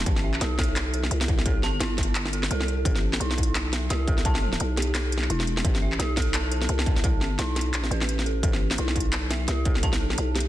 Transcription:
Already playing: synth bell E4 G4 A4 E5 A5
0.06 808-style bass A1, kick, closed hi-hat
0.16 snare
0.24 synth bell E5
0.34 clap
0.41 808-style bass B1, synth bell G4, snare, closed hi-hat
0.59 synth bell A4, kick, snare, closed hi-hat
0.63 closed hi-hat
0.76 clap, snare, closed hi-hat
0.94 synth bell A4, closed hi-hat
1.03 snare
1.11 808-style bass C2, closed hi-hat
1.21 snare
1.28 kick, closed hi-hat
1.39 snare
1.46 synth bell A4, kick, closed hi-hat
1.63 synth bell A5, snare
1.80 808-style bass G1, synth bell E4, snare, closed hi-hat
1.98 kick, snare, closed hi-hat
2.03 closed hi-hat
2.15 clap, closed hi-hat
2.25 snare
2.33 synth bell A4, closed hi-hat
2.43 clap, snare
2.51 808-style bass C2, synth bell A4, closed hi-hat
2.60 snare
2.68 synth bell A4, closed hi-hat
2.85 808-style bass A1, synth bell A4, kick, closed hi-hat
2.96 snare
3.13 clap, snare
3.20 808-style bass B1, synth bell E4, closed hi-hat
3.31 snare
3.38 kick, closed hi-hat
3.43 closed hi-hat
3.55 clap, snare, closed hi-hat
3.73 synth bell E5, snare, closed hi-hat
3.90 808-style bass C2, synth bell G4, snare, closed hi-hat
4.08 synth bell A4, kick, closed hi-hat
4.18 snare
4.25 synth bell A5, kick, closed hi-hat
4.35 snare
4.43 synth bell A4
4.53 snare
4.60 808-style bass B1, closed hi-hat
4.77 kalimba G4, snare, closed hi-hat
4.82 closed hi-hat
4.88 kalimba G4
4.95 synth bell A4, clap, snare, closed hi-hat
5.12 closed hi-hat
5.18 snare
5.22 clap
5.30 808-style bass E1, synth bell E4, closed hi-hat
5.40 snare
5.47 closed hi-hat
5.57 snare
5.65 808-style bass A1, kick, closed hi-hat
5.75 snare
5.82 synth bell E5
5.92 clap
5.99 808-style bass B1, synth bell G4, snare, closed hi-hat
6.17 synth bell A4, kick, snare, closed hi-hat
6.22 closed hi-hat
6.34 synth bell A5, clap, snare, closed hi-hat
6.52 synth bell A4, closed hi-hat
6.62 snare
6.69 808-style bass C2, closed hi-hat
6.79 snare
6.86 kick, closed hi-hat
6.96 snare
7.04 synth bell A4, kick, closed hi-hat
7.21 snare
7.39 808-style bass B1, synth bell E4, snare, closed hi-hat
7.56 snare, closed hi-hat
7.61 closed hi-hat
7.74 808-style bass A#1, clap, closed hi-hat
7.84 snare
7.91 808-style bass A1, synth bell B4, closed hi-hat
8.01 clap, snare
8.09 closed hi-hat
8.19 snare
8.26 synth bell A4, closed hi-hat
8.43 808-style bass A1, synth bell A4, kick, closed hi-hat
8.53 snare
8.71 clap, snare
8.78 808-style bass B1, synth bell E4, closed hi-hat
8.88 snare
8.96 kick, closed hi-hat
9.00 closed hi-hat
9.13 clap, snare, closed hi-hat
9.31 synth bell E5, snare, closed hi-hat
9.48 808-style bass C2, synth bell G4, snare, closed hi-hat
9.65 synth bell A4, kick, closed hi-hat
9.75 snare
9.83 synth bell A5, kick, closed hi-hat
9.93 snare
9.97 808-style bass B1, synth bell A4
10.10 snare
10.18 808-style bass B1, closed hi-hat
10.36 kalimba G4, snare, closed hi-hat
10.40 closed hi-hat
10.45 kalimba G4

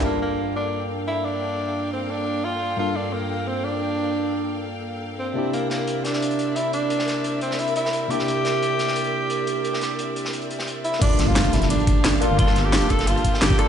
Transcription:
0.02 tine electric piano G2 A#3 D4 F4, tenor saxophone A#3, string section A#3 A4 F5 G5
0.07 tine electric piano A4
0.22 tenor saxophone A#3
0.56 tenor saxophone D4
1.07 tenor saxophone E4
1.25 tenor saxophone D4
1.93 tenor saxophone C4
2.10 tenor saxophone D4
2.45 tenor saxophone F4
2.76 tine electric piano G2 A#3 D4 F4, tenor saxophone F4
2.81 tine electric piano A4
2.96 tenor saxophone D4
3.13 tenor saxophone A#3
3.47 tenor saxophone C4
3.65 tenor saxophone D4
5.19 tenor saxophone C4
5.34 tine electric piano C3 A#3 D4 E4, string section C4 A#4 D5 E5
5.38 tine electric piano G4
5.53 tenor saxophone A#3, closed hi-hat
5.70 tenor saxophone A#3, snare, closed hi-hat
5.87 closed hi-hat
6.05 tenor saxophone D4, snare, closed hi-hat
6.13 snare
6.22 closed hi-hat
6.31 closed hi-hat
6.39 closed hi-hat
6.56 tenor saxophone E4, closed hi-hat
6.73 tenor saxophone D4, closed hi-hat
6.90 closed hi-hat
6.99 snare
7.08 snare, closed hi-hat
7.24 closed hi-hat
7.41 tenor saxophone C4, closed hi-hat
7.51 snare
7.59 tenor saxophone E4, closed hi-hat
7.67 closed hi-hat
7.76 tenor saxophone E4, closed hi-hat
7.85 snare
7.93 closed hi-hat
8.08 tine electric piano C3 A#3 D4 E4, tenor saxophone G4, closed hi-hat
8.13 tine electric piano G4
8.19 snare
8.28 closed hi-hat
8.45 snare, closed hi-hat
8.62 closed hi-hat
8.79 snare, closed hi-hat
8.88 snare
8.96 closed hi-hat
9.04 closed hi-hat
9.30 closed hi-hat
9.47 closed hi-hat
9.64 closed hi-hat
9.73 snare
9.81 snare, closed hi-hat
9.99 closed hi-hat
10.16 closed hi-hat
10.25 snare
10.33 closed hi-hat
10.42 closed hi-hat
10.50 closed hi-hat
10.59 snare
10.67 closed hi-hat
10.84 tenor saxophone E4, closed hi-hat
10.93 snare
10.99 tine electric piano A#3 D4 F4, string section A#3 G4 F5 A5, tenor saxophone D4, kick, closed hi-hat, crash, impact
11.04 tine electric piano A4
11.19 detuned saw bass G1, snare, closed hi-hat
11.27 tenor saxophone F4
11.35 snare, closed hi-hat
11.45 detuned saw bass F1, closed hi-hat
11.53 tenor saxophone E4, snare, closed hi-hat
11.62 snare, closed hi-hat
11.70 detuned saw bass G1, tenor saxophone D4, closed hi-hat
11.79 closed hi-hat
11.87 kick, closed hi-hat
12.04 detuned saw bass G1, snare, closed hi-hat
12.13 cross-stick
12.21 tine electric piano A#3 D4 F4 A4, tenor saxophone F4, closed hi-hat
12.30 detuned saw bass G1
12.36 tine electric piano A#3 D4 F4, tenor saxophone F4, kick, closed hi-hat
12.41 tine electric piano A4
12.47 cross-stick, snare
12.56 detuned saw bass G1, snare, closed hi-hat
12.65 tenor saxophone G4
12.73 snare, closed hi-hat
12.82 detuned saw bass F1, closed hi-hat
12.90 tenor saxophone A4, kick, closed hi-hat
12.99 snare, closed hi-hat
13.07 detuned saw bass G1, tenor saxophone F4, closed hi-hat
13.16 cross-stick, closed hi-hat
13.24 kick, closed hi-hat
13.34 snare
13.41 detuned saw bass G1, tenor saxophone G4, snare, closed hi-hat
13.50 kick
13.58 tine electric piano A#3 D4 F4 A4, tenor saxophone A4, cross-stick, closed hi-hat

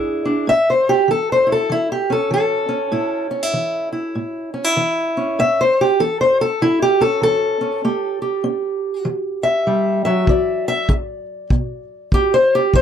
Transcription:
Already playing: steel-string acoustic guitar G#3 D4 E4 G#4
0.25 steel-string acoustic guitar D4
0.47 steel-string acoustic guitar A2 E5
0.70 steel-string acoustic guitar C5
0.89 steel-string acoustic guitar G4
1.08 steel-string acoustic guitar E3 A4
1.32 steel-string acoustic guitar C5
1.47 steel-string acoustic guitar E4
1.52 steel-string acoustic guitar A4
1.70 steel-string acoustic guitar E3 E4
1.92 steel-string acoustic guitar G4
2.10 steel-string acoustic guitar C#4 A4
2.31 steel-string acoustic guitar E3 A4
2.69 steel-string acoustic guitar C#4
2.92 steel-string acoustic guitar A2 E4
3.31 steel-string acoustic guitar C#4
3.43 steel-string acoustic guitar E4
3.53 steel-string acoustic guitar E3
3.92 steel-string acoustic guitar E4
4.15 steel-string acoustic guitar A2
4.54 steel-string acoustic guitar C#4
4.64 steel-string acoustic guitar E4
4.77 steel-string acoustic guitar E3
5.17 steel-string acoustic guitar C#4
5.39 steel-string acoustic guitar A2 E5
5.61 steel-string acoustic guitar C5
5.81 steel-string acoustic guitar G4
6.00 steel-string acoustic guitar E3 A4
6.21 steel-string acoustic guitar C5
6.41 steel-string acoustic guitar A4
6.62 steel-string acoustic guitar E3 E4
6.82 steel-string acoustic guitar G4
7.01 steel-string acoustic guitar C#4 A4
7.22 steel-string acoustic guitar E3 A4
7.61 steel-string acoustic guitar C#4
7.85 steel-string acoustic guitar A3 G4
8.22 steel-string acoustic guitar G4
8.44 steel-string acoustic guitar C#4
9.05 steel-string acoustic guitar E3
9.43 steel-string acoustic guitar E5
9.67 steel-string acoustic guitar G3
10.05 steel-string acoustic guitar F#3 E5
10.27 steel-string acoustic guitar E3 D5, kick
10.68 steel-string acoustic guitar E5
10.89 steel-string acoustic guitar G#4, kick
11.50 steel-string acoustic guitar B2, kick
12.12 steel-string acoustic guitar G4, kick
12.34 steel-string acoustic guitar C5
12.55 steel-string acoustic guitar G4
12.74 steel-string acoustic guitar E3 C5, kick

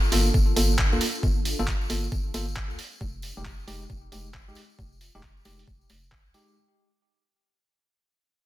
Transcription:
Already playing: analog synth pad A#3 D4 F4 A4
0.04 tambourine
0.12 fm bass G1, tine electric piano A#3 F4 A4, open hi-hat, tambourine
0.26 tambourine
0.34 fm bass G1, kick, tambourine
0.56 fm bass G1, tine electric piano A#3 F4 A4, open hi-hat, tambourine
0.71 tambourine
0.79 kick, clap
0.92 fm bass D2, tine electric piano A#3 F4 A4, tambourine
1.01 open hi-hat, tambourine
1.15 tambourine
1.23 fm bass G1, kick, tambourine
1.45 open hi-hat, tambourine
1.59 fm bass G1, tine electric piano A#3 F4 A4, tambourine
1.68 kick, clap
1.81 tambourine
1.90 fm bass G1, tine electric piano A#3 F4 A4, open hi-hat, tambourine
2.04 tambourine
2.12 fm bass G1, kick, tambourine
2.34 fm bass G1, tine electric piano A#3 F4 A4, open hi-hat, tambourine
2.48 tambourine
2.56 kick, clap
2.70 fm bass D2, tambourine
2.79 analog synth pad G#3 C4 D#4 G4, open hi-hat, tambourine
2.92 tambourine
3.01 fm bass F1, kick, tambourine
3.22 open hi-hat, tambourine
3.37 fm bass F1, tine electric piano G#3 D#4 G4, tambourine
3.45 kick, clap, tambourine
3.60 tambourine
3.68 fm bass F1, tine electric piano G#3 D#4 G4, open hi-hat, tambourine
3.82 tambourine
3.90 fm bass F1, kick, tambourine
4.12 fm bass F1, tine electric piano G#3 D#4 G4, open hi-hat, tambourine
4.26 tambourine
4.34 kick, clap
4.48 fm bass C2, tine electric piano G#3 D#4 G4, tambourine
4.55 analog synth pad F4, open hi-hat, tambourine
4.70 tambourine
4.79 fm bass F1, kick, tambourine
4.92 tambourine
5.01 open hi-hat, tambourine
5.15 fm bass F1, tine electric piano G#3 D#4 G4, tambourine
5.23 kick, clap
5.37 tambourine
5.45 fm bass F1, tine electric piano G#3 D#4 G4, open hi-hat, tambourine
5.59 open hi-hat, tambourine
5.68 fm bass F1, kick, tambourine
5.81 tambourine
5.89 fm bass F1, open hi-hat, tambourine
6.04 tambourine
6.12 kick, clap
6.26 fm bass C2, tambourine
6.34 tine electric piano G#3 D#4 G4, open hi-hat, tambourine
6.48 tambourine

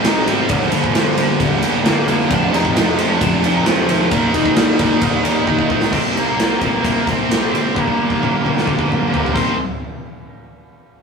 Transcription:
0.04 picked electric bass C2, overdriven electric guitar C3 G3 C4 D#4, lead electric guitar D#4 D#5, snare, ride
0.27 picked electric bass G#1, overdriven electric guitar C3 G3 C4 D#4, lead electric guitar G3 G4, ride
0.49 picked electric bass G1, overdriven electric guitar G2 D3 G3 A#3 D4, lead electric guitar F3 F4, kick, ride
0.62 snare
0.72 picked electric bass G1, overdriven electric guitar G2 D3 G3 A#3 D4, ride
0.84 kick
0.93 picked electric bass G1, overdriven electric guitar G2 D3 G3 A#3, snare, ride
0.98 overdriven electric guitar D4
1.17 picked electric bass G1, overdriven electric guitar G2 D3 G3 A#3 D4, ride
1.39 picked electric bass G1, overdriven electric guitar G2 D3 G3 A#3 D4, kick, ride
1.61 picked electric bass G1, overdriven electric guitar G2 D3 G3 A#3 D4, ride
1.83 picked electric bass G1, overdriven electric guitar G2 D3 G3 A#3 D4, lead electric guitar A#3 A#4, snare, ride
2.06 picked electric bass F1, overdriven electric guitar G2 D3, lead electric guitar A#3 A#4, ride
2.10 overdriven electric guitar G3 A#3 D4
2.20 snare
2.29 picked electric bass F1, overdriven electric guitar F2 C3 F3 G#3, lead electric guitar D4 D5, kick, ride
2.33 overdriven electric guitar C4
2.52 picked electric bass F1, overdriven electric guitar F2 C3 F3 G#3 C4, lead electric guitar D#4 D#5, ride
2.65 kick
2.74 picked electric bass F1, overdriven electric guitar F2 C3 F3, snare, ride
2.78 overdriven electric guitar G#3 C4
2.97 picked electric bass F1, overdriven electric guitar F2 C3 F3, lead electric guitar F3 F4, ride
3.01 overdriven electric guitar G#3 C4
3.09 lead electric guitar D4 D5
3.21 picked electric bass F1, overdriven electric guitar F2 C3 F3 G#3 C4, kick, ride
3.42 picked electric bass F1, overdriven electric guitar F2 C3 F3 G#3, ride
3.47 overdriven electric guitar C4
3.54 lead electric guitar D#4 D#5
3.64 picked electric bass F1, overdriven electric guitar F2 C3 F3, lead electric guitar F3 F4, snare, ride
3.69 overdriven electric guitar G#3 C4
3.78 lead electric guitar F3 F4
3.88 picked electric bass D#2, overdriven electric guitar F2 C3 F3 G#3 C4, ride
4.10 picked electric bass D#2, overdriven electric guitar D#3 G3 A#3 D#4, lead electric guitar G3 G4, kick, ride
4.33 picked electric bass D#2, overdriven electric guitar D#3 G3 A#3 D#4, kick, ride
4.46 kick
4.56 picked electric bass D#2, overdriven electric guitar D#3 G3 A#3 D#4, snare, ride
4.78 picked electric bass D#2, overdriven electric guitar D#3 G3 A#3 D#4, kick, ride
5.01 picked electric bass D#2, overdriven electric guitar D#3 G3 A#3 D#4, kick, ride
5.23 picked electric bass D#2, overdriven electric guitar D#3 G3 A#3 D#4, ride
5.46 picked electric bass D#2, overdriven electric guitar D#3 G3 A#3 D#4, kick
5.59 kick
5.70 picked electric bass C2, overdriven electric guitar D#3 G3 A#3 D#4, kick
5.82 snare
5.91 picked electric bass C2, clean electric guitar C3 D#3 A#3 C4 G4, distorted electric guitar C3 G3 C4, lead electric guitar C4 C5, kick, crash
6.15 picked electric bass C2, lead electric guitar A#3 A#4, clean electric guitar A#3 C4 G4, ride
6.37 picked electric bass C2, distorted electric guitar C3 G3 C4, clean electric guitar D#3 A#3 C4 G4, snare, ride
6.60 picked electric bass C2, distorted electric guitar C3 G3 C4, lead electric guitar A#3 A#4, kick, ride
6.83 picked electric bass C2, distorted electric guitar C3 G3 C4, clean electric guitar C3 D#3 A#3 C4 G4, kick, ride
7.05 picked electric bass C2, clean electric guitar A#3 C4 G4, lead electric guitar C4, kick, ride
7.11 lead electric guitar C5
7.29 picked electric bass C2, distorted electric guitar C3 G3 C4, clean electric guitar D#3 A#3 C4 G4, snare, ride
7.50 picked electric bass G1, distorted electric guitar C3 G3 C4, clean electric guitar G4
7.55 clean electric guitar A#3 C4, lead electric guitar C4 C5, ride
7.74 picked electric bass G1, distorted electric guitar G2 D3 G3, clean electric guitar G2 D3 F3 A#3 D4 G4, lead electric guitar A#3, kick, high tom
7.79 lead electric guitar A#4
7.88 kick
7.97 picked electric bass G1, clean electric guitar F3 A#3 D4 G4
8.10 kick
8.20 picked electric bass G1, distorted electric guitar G2 D3 G3, clean electric guitar F3 A#3 D4 G4, mid tom
8.43 picked electric bass G1, distorted electric guitar G2 D3 G3, mid tom
8.57 snare
8.65 picked electric bass G1, distorted electric guitar G2 D3 G3, clean electric guitar G2 D3 F3 A#3 D4, kick
8.69 clean electric guitar G4
8.79 kick
8.88 picked electric bass G1, clean electric guitar A#3 D4 G4
8.92 clean electric guitar F3, mid tom
9.09 picked electric bass G1, distorted electric guitar G2 D3 G3, clean electric guitar F3 A#3 D4
9.14 clean electric guitar G4, floor tom
9.26 floor tom
9.34 picked electric bass C2, distorted electric guitar C3 G3 C4, clean electric guitar C3 G3 A#3 D#4 G4, lead electric guitar C5, kick, crash

